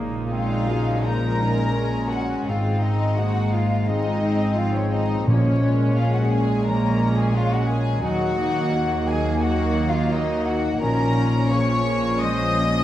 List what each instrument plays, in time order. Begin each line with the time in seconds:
Already playing: double bass section A#1, timpani A#2, cello section A#2, harp A#2 A#3 A#4, french horn section C#3 G#3, viola section A#3 D#4, clarinet A#3
0.30 viola section G#3, clarinet C4, violin section F4 F5, harp G#4, flute F5
0.68 viola section F#3, clarinet C#4, harp A#4
1.04 viola section F3, harp G#3, clarinet D#4, violin section A#4 A#5, flute A#5
1.41 harp A#3, clarinet C#4
1.78 viola section G#3 C#4, harp G#4
2.11 violin section F#4 F#5, harp A#4, flute F#5
2.46 double bass section G#1, harp G#2, cello section G#2, viola section G#3 C4, clarinet C4, french horn section D#4, violin section F4 F5, flute F5
2.81 harp C4, violin section D#4 D#5, flute D#5
3.17 clarinet G#3, viola section A#3 D#4, violin section F#4 F#5, harp G#4, flute F#5
3.52 violin section F4 F5, harp C5, flute F5
3.87 harp G#2, viola section G#3 F4, clarinet C4, violin section D#4 D#5, flute D#5
4.23 harp C4, viola section C4
4.56 viola section F3 C4, violin section F4 F5, harp G#4, flute F5
4.73 violin section C#4 C#5, flute C#5
4.92 violin section D#4 D#5, harp C5, flute D#5
5.26 double bass section A#1, harp A#2, timpani A#2, cello section A#2, viola section F3 C#4, french horn section G#3 C#4, clarinet A#3, violin section C#4 C#5, flute C#5
5.62 viola section G#3, clarinet G#3, harp A#3
5.96 viola section G#3, clarinet C#4, violin section F4 F5, harp G#4, flute F5
6.13 violin section F#4 F#5, flute F#5
6.30 violin section G#4 G#5, harp A#4, flute G#5
6.65 harp F3, clarinet A#3, viola section C#4, violin section A#4 A#5, flute A#5
7.02 harp A#3
7.16 violin section G#4, flute G#5
7.20 violin section G#5
7.35 clarinet G#3, violin section F4 F5, harp G#4, flute F5
7.51 violin section F#4 F#5, flute F#5
7.68 violin section G#4, harp A#4, flute G#5
7.73 violin section G#5
8.03 double bass section D#2, french horn section D#3 D#4, cello section D#3, harp D#3, clarinet F#3, viola section F#3 D#4, violin section F#4 F#5, flute F#5
8.38 clarinet A#3, viola section D#4, harp D#4
8.74 viola section A#3, harp A#4
9.07 violin section G#4 G#5, harp D#5, flute G#5
9.43 viola section F#3, harp A#3, violin section F#4 F#5, flute F#5
9.78 harp D#4
9.89 violin section F4 F5, flute F5
10.12 violin section D#4 D#5, harp A#4, flute D#5
10.46 violin section F#4 F#5, harp D#5, flute F#5
10.81 double bass section A#1, cello section A#2, harp A#2, viola section F3 C#4, clarinet C#4, french horn section C#4, violin section A#4 A#5, flute A#5
11.17 harp C#4
11.50 french horn section F3, viola section F3, clarinet A#3, harp G#4, violin section C#5 C#6, flute C#6
11.84 clarinet A#3, viola section A#3, harp C#5
12.19 harp F3, clarinet G#3, viola section G#3 C5, violin section D#5 D#6, flute D#6
12.56 clarinet A#3, viola section A#3, harp C#4